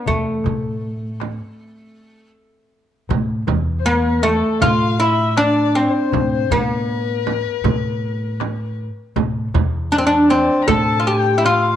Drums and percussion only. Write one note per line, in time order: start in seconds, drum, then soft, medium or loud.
0.06 darbuka dum medium
0.06 frame drum medium
0.44 darbuka dum medium
0.44 frame drum medium
0.63 darbuka ka soft
0.82 darbuka ka soft
1.20 darbuka tek medium
1.20 frame drum medium
3.09 darbuka dum medium
3.09 frame drum medium
3.47 darbuka dum medium
3.47 frame drum medium
3.66 darbuka ka soft
4.23 darbuka tek medium
4.23 frame drum medium
4.61 darbuka dum medium
4.61 frame drum medium
4.99 darbuka ka soft
5.37 darbuka tek medium
5.37 frame drum medium
6.12 darbuka dum medium
6.12 frame drum medium
6.50 darbuka dum medium
6.50 frame drum medium
6.88 darbuka ka soft
7.27 frame drum medium
7.64 darbuka dum medium
7.64 frame drum medium
8.02 darbuka ka soft
8.40 darbuka tek medium
8.40 frame drum medium
9.16 darbuka dum medium
9.16 frame drum medium
9.54 darbuka dum medium
9.54 frame drum medium
10.29 darbuka tek medium
10.29 frame drum medium
10.67 darbuka dum medium
10.67 frame drum loud
11.44 darbuka tek medium
11.44 frame drum medium